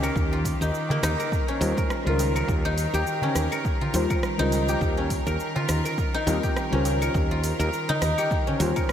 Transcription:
Already playing: D#3 C#4 D#4 F4 G4 A#4
0.03 A#4, darbuka tek, claves, shaker
0.15 D#2, kick, shaker
0.31 F4, darbuka ka
0.45 kick, open hi-hat, shaker
0.61 D#2 D#4, darbuka ka, shaker
0.75 shaker
0.89 A#3, darbuka ka, darbuka tek, darbuka dum
1.03 D#2 D#4, cross-stick, open hi-hat, shaker
1.20 A#4, shaker
1.32 A#4, kick, shaker
1.48 C#4, darbuka ka
1.61 D#2 G3 F4 A#4 C5, open hi-hat, darbuka tek, shaker
1.77 A#4, kick, shaker
1.90 cross-stick, shaker
2.04 C#2 G3 F4 C5
2.08 A#4
2.19 open hi-hat, darbuka tek, shaker
2.36 A#4, claves, shaker
2.48 D#2, kick, darbuka ka, shaker
2.65 D#4
2.78 open hi-hat, shaker
2.94 D#2 G4, shaker
3.07 shaker
3.22 C#4, darbuka tek, darbuka dum
3.35 D#2, cross-stick, open hi-hat, shaker
3.52 A#4, darbuka ka, claves, shaker
3.65 kick, darbuka tek, shaker
3.81 F4, darbuka ka, darbuka dum
3.93 D#2 G3 F4 C5, open hi-hat, darbuka tek, shaker
4.10 A#4, kick, claves, shaker
4.23 cross-stick, shaker
4.37 C#2 G3 D#4 F4 A#4 C5
4.52 open hi-hat, darbuka tek, shaker
4.69 G4, darbuka tek, shaker
4.81 D#2, kick, shaker
4.97 C#4, darbuka ka
5.10 kick, open hi-hat, shaker
5.27 D#2 A#4, darbuka ka, shaker
5.40 shaker
5.56 F4, darbuka ka, darbuka tek, darbuka dum
5.69 D#2, cross-stick, open hi-hat, shaker
5.85 A#4, shaker
5.98 kick, shaker
6.14 D#4, darbuka ka
6.26 D#2 G3 C4 F4 A#4, open hi-hat, darbuka tek, shaker
6.43 G4, kick, shaker
6.57 cross-stick, shaker
6.71 C#2 G3 C#4 F4 C5
6.75 A#4
6.85 open hi-hat, darbuka tek, shaker
7.02 A#4, claves, shaker
7.14 D#2, kick, darbuka ka, shaker
7.31 F4
7.44 open hi-hat, shaker
7.59 D#2 A#4, shaker
7.73 shaker
7.89 D#4, darbuka tek, darbuka dum
8.02 D#2, cross-stick, open hi-hat, shaker
8.18 G4, darbuka ka, claves, shaker
8.31 kick, darbuka tek, shaker
8.47 C#4, darbuka ka, darbuka dum
8.59 D#2 G3 F4 C5, open hi-hat, darbuka tek, shaker
8.76 A#4, kick, claves, shaker
8.89 cross-stick, shaker

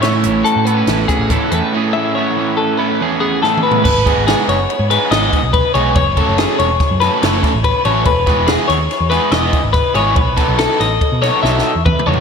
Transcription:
Already playing: A2 A3 F#4
0.02 A2 E3 A3 B3 C#4 E4 C#5, snare, closed hi-hat
0.14 C#4
0.23 A1 E3 A3 C#4 E4, closed hi-hat
0.44 F#4 A4, closed hi-hat
0.56 A2
0.65 A3 B3 C#4 E4 B4, closed hi-hat
0.77 C#4
0.87 A1 E2 E3 A3 C#4 E4, snare, closed hi-hat
0.98 F#4
1.08 B3 G#4, kick, snare, closed hi-hat
1.19 A1 C#4
1.30 A2 E3 A3 C#4 E4 A4, kick, snare, closed hi-hat
1.43 F#4
1.52 E2 A3 C#4 E4 B4, closed hi-hat
1.73 A2 E3 A3 C#4 E4 G#4
1.93 A3 C#4 E4 E5
2.15 A2 E3 A3 B3 C#4 E4 C#5
2.36 E3 A3 C#4 E4
2.57 A4 B4
2.78 A3 B3 C#4 E4 B4
3.01 E2 E3 A3 C#4 E4 G#4
3.20 B3 G#4
3.42 A2 E3 A3 C#4 E4 G#4 A4, snare
3.57 mid tom
3.63 G#3 A3 C#4 E4 B4
3.71 floor tom
3.84 G#1 B4, kick, crash
4.06 G#3 B3 D#4 G#4, kick, ride
4.17 G#1
4.27 G#3 B3 D#4 G#4, snare, ride
4.48 F#1 C#5, ride
4.70 ride
4.79 G#2
4.90 G#3 B3 D#4 G#4 B4, ride
5.11 G#1 G#3 B3 D#4 G#4 D#5, snare, ride
5.33 kick, ride
5.43 B1
5.53 B4, kick, ride
5.74 B1 G#3 B3 D#4 G#4 C#5, ride
5.95 F#1 C#5, kick, ride
6.17 F#3 A3 C#4 A4, kick, ride
6.28 F#1
6.38 F#3 A3 C#4 G#4 A4, snare, ride
6.59 E1 C#5, ride
6.80 kick, snare, ride
6.91 F#2
7.00 F#3 A3 C#4 A4 B4, snare, ride
7.22 F#1 F#3 A3 C#4 A4 C#5, snare, ride
7.43 kick, snare, ride
7.54 A1
7.64 B4, kick, ride
7.85 A1 F#3 A3 C#4 A4 C#5, ride
8.05 E1 B4, kick, ride
8.27 G#3 B3 E4 G#4, kick, snare, ride
8.38 E1
8.47 G#3 B3 E4 G#4, snare, ride
8.68 D#2 C#5, snare, ride
8.91 snare, ride
9.00 E2
9.10 G#3 B3 E4 G#4 B4, snare, ride
9.31 E1 G#3 B3 E4 G#4 D#5, snare, ride
9.53 kick, ride
9.64 G#1
9.73 B4, kick, snare, ride
9.95 G#1 G#3 B3 E4 G#4 C#5, ride
10.16 B1 B4, kick, ride
10.37 F#3 B3 D#4 A4, kick, snare, ride
10.48 B1
10.59 F#3 B3 D#4 A4, snare, ride
10.80 A1 D#5, snare, ride
11.01 kick, ride
11.12 B2
11.22 F#3 B3 D#4 A4 C#5, snare, ride
11.43 B1 F#3 B3 D#4 A4 E5, snare
11.59 snare
11.75 E2
11.86 B4, kick, mid tom
11.99 mid tom
12.07 E2 F#3 B3 D#4 A4 C#5
12.13 floor tom

